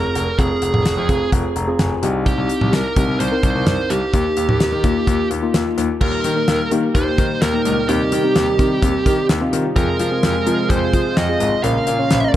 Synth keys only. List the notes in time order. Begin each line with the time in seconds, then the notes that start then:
Already playing: C4 F4 G#4
0.39 C4 F4 G#4
1.09 C4 F4 G#4
1.56 A#5
1.67 C4 F4 G#4
1.79 G#5
2.03 C4 D#4 G4 D#5
2.96 C4 D#4 G4
3.32 C4 D#4 A#4
4.14 A#3 D#4 G4
4.84 A#3 D#4 F4
5.42 A#3 D#4 F4
6.01 A#3 D#4 G4
6.36 A#3 D#4 A#4
6.71 A#3 D#4 G4
6.95 A#3 D#4 G4
7.53 A#3 D#4 G4
7.89 C4 D#4 G4
8.24 C4 D#4 G4
8.59 C4 D#4 G4
8.82 C4 D#4 G4
9.41 C4 D#4 F4
9.76 C4 F4 G#4
10.11 C4 F4 G#4
10.46 C4 F4 A#4
10.70 C4 F4 G#4
11.29 C4 F4 G#4
11.64 C#4 F4 A#4
11.99 C#4 F4 C#5